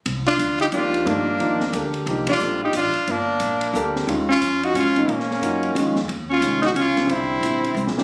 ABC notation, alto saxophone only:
X:1
M:3/4
L:1/8
Q:"Swing" 1/4=179
K:Cdor
V:1 name="Alto saxophone"
z D2 E D2 | B,4- B, z | z D2 E D2 | B,4- B, z |
z _D2 E D2 | B,4- B, z | z _D2 E D2 | C4- C z |]